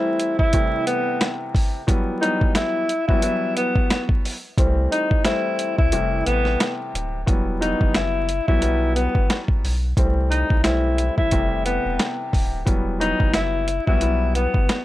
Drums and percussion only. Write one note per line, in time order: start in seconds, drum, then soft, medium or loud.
0.20 closed hi-hat medium
0.39 kick medium
0.53 kick loud
0.53 closed hi-hat loud
0.87 closed hi-hat medium
1.21 snare loud
1.21 snare medium
1.21 closed hi-hat medium
1.55 kick loud
1.55 open hi-hat medium
1.88 kick loud
1.88 closed hi-hat loud
2.23 closed hi-hat medium
2.41 kick loud
2.55 snare loud
2.55 closed hi-hat medium
2.89 closed hi-hat medium
3.09 kick loud
3.22 closed hi-hat loud
3.57 closed hi-hat medium
3.75 kick loud
3.90 snare loud
3.90 snare medium
3.90 closed hi-hat medium
4.09 kick loud
4.25 open hi-hat medium
4.58 kick loud
4.58 closed hi-hat loud
4.92 closed hi-hat medium
5.11 kick loud
5.25 snare loud
5.25 snare medium
5.25 closed hi-hat medium
5.59 closed hi-hat medium
5.78 kick medium
5.92 closed hi-hat loud
6.26 closed hi-hat medium
6.45 snare soft
6.60 snare loud
6.60 snare medium
6.60 closed hi-hat medium
6.95 closed hi-hat medium
7.27 kick loud
7.27 closed hi-hat loud
7.62 closed hi-hat medium
7.81 kick loud
7.95 snare loud
7.95 snare medium
7.95 closed hi-hat medium
8.29 closed hi-hat medium
8.48 kick medium
8.62 closed hi-hat medium
8.96 closed hi-hat medium
9.15 kick medium
9.30 snare loud
9.30 snare medium
9.30 closed hi-hat medium
9.48 kick loud
9.65 open hi-hat soft
9.97 kick loud
9.97 closed hi-hat loud
10.32 closed hi-hat medium
10.50 kick loud
10.64 snare loud
10.64 snare medium
10.64 closed hi-hat medium
10.98 closed hi-hat medium
11.18 kick medium
11.31 kick medium
11.31 closed hi-hat loud
11.66 closed hi-hat medium
11.99 snare loud
11.99 snare medium
11.99 closed hi-hat medium
12.33 kick loud
12.33 open hi-hat soft
12.67 kick loud
12.67 closed hi-hat loud
13.01 closed hi-hat medium
13.20 kick loud
13.34 snare loud
13.34 snare medium
13.34 closed hi-hat medium
13.68 closed hi-hat medium
13.87 kick medium
14.01 closed hi-hat loud
14.35 closed hi-hat medium
14.54 kick medium
14.69 snare loud
14.69 snare medium
14.69 closed hi-hat medium